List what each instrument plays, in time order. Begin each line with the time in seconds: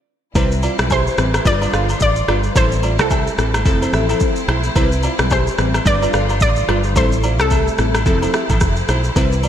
0.35 fingered electric bass C2, string section E3 G3 C4 E4, synth keys G3 C4 E4 B4, nylon-string guitar E4 C5, kick, high agogo, shaker
0.52 shaker
0.63 nylon-string guitar F4 D5, high agogo, shaker
0.79 fingered electric bass B1, synth keys G3 C4 E4 B4, cross-stick, shaker
0.90 nylon-string guitar G4 E5, synth pluck C5, kick, high agogo, low woodblock, shaker
1.07 shaker
1.18 fingered electric bass A1, synth keys G3 C4 E4 B4, cross-stick, shaker
1.34 cross-stick, high agogo, shaker
1.45 fingered electric bass G1, string section D3 F3 F4, synth keys G3 D4 F4 B4, synth pluck D5, kick, shaker
1.62 nylon-string guitar F4 D5, high agogo, shaker
1.73 fingered electric bass G1, synth keys G3 D4 F4 B4, nylon-string guitar A4 F5, cross-stick, shaker
1.89 high agogo, shaker
2.00 fingered electric bass A1, synth pluck D5, kick, shaker
2.16 shaker
2.28 fingered electric bass G1, synth keys G3 D4 F4 B4, nylon-string guitar F4 D5, cross-stick, high agogo
2.43 shaker
2.55 fingered electric bass A1, synth keys G3 C4 E4 A4, string section G3 A3 C4 E4, nylon-string guitar E4 C5, synth pluck C5, kick, high agogo, shaker
2.72 shaker
2.83 nylon-string guitar F4 D5, high agogo, shaker
2.99 fingered electric bass C2, synth keys G3 C4 E4 A4, synth pluck A4, cross-stick, shaker
3.10 nylon-string guitar G4 E5, kick, high agogo, low woodblock, shaker
3.27 shaker
3.38 fingered electric bass A1, synth keys G3 C4 E4 A4, cross-stick, shaker
3.54 cross-stick, high agogo, shaker
3.65 fingered electric bass F1, synth keys F3 C4 E4 A4, string section F3 E4, kick, shaker
3.82 nylon-string guitar E4 C5, high agogo, shaker
3.93 fingered electric bass A1, nylon-string guitar G4 E5, cross-stick, shaker
4.09 synth keys F3 C4 E4 A4, high agogo, shaker
4.20 kick, shaker
4.36 shaker
4.48 fingered electric bass B1, nylon-string guitar E4 C5, cross-stick, high agogo
4.63 shaker
4.75 fingered electric bass C2, synth keys G3 C4 E4 B4, string section G3, nylon-string guitar E4 C5, kick, high agogo, shaker
4.92 shaker
5.03 nylon-string guitar F4 D5, high agogo, shaker
5.19 fingered electric bass B1, synth keys G3 C4 E4 B4, cross-stick, shaker
5.30 nylon-string guitar G4 E5, synth pluck C5, kick, high agogo, low woodblock, shaker
5.47 shaker
5.58 fingered electric bass A1, synth keys G3 C4 E4 B4, cross-stick, shaker
5.74 cross-stick, high agogo, shaker
5.85 fingered electric bass G1, string section D3 F3 F4, synth keys G3 D4 F4 B4, synth pluck D5, kick, shaker
6.02 nylon-string guitar F4 D5, high agogo, shaker
6.13 fingered electric bass G1, synth keys G3 D4 F4 B4, nylon-string guitar A4 F5, cross-stick, shaker
6.29 high agogo, shaker
6.40 fingered electric bass A1, synth pluck D5, kick, shaker
6.56 shaker
6.68 fingered electric bass G1, synth keys G3 D4 F4 B4, nylon-string guitar F4 D5, cross-stick, high agogo
6.84 shaker
6.96 fingered electric bass A1, string section C3 A3 E4, synth keys G3 C4 E4 A4, nylon-string guitar E4 C5, synth pluck C5, kick, high agogo, shaker
7.12 shaker
7.23 nylon-string guitar F4 D5, high agogo, shaker
7.39 fingered electric bass C2, synth keys G3 C4 E4 A4, synth pluck A4, cross-stick, shaker
7.50 nylon-string guitar G4 E5, kick, high agogo, shaker
7.67 shaker
7.78 fingered electric bass A1, synth keys G3 C4 E4 A4, cross-stick, shaker
7.95 cross-stick, high agogo, shaker
8.06 fingered electric bass F1, synth keys F3 C4 E4 A4, string section F3 C4, kick, shaker
8.22 nylon-string guitar E4 C5, high agogo, shaker
8.33 nylon-string guitar G4 E5, cross-stick, shaker
8.49 fingered electric bass A1, synth keys F3 C4 E4 A4, kick, high agogo, shaker
8.60 fingered electric bass F1, kick, cross-stick, shaker
8.76 shaker
8.88 fingered electric bass B1, nylon-string guitar E4 C5, cross-stick, high agogo, shaker
9.04 shaker
9.16 fingered electric bass C2, string section E3 G3, synth keys G3 C4 E4 B4, nylon-string guitar E4 C5, kick, high agogo, shaker
9.32 shaker
9.43 nylon-string guitar F4 D5, high agogo, shaker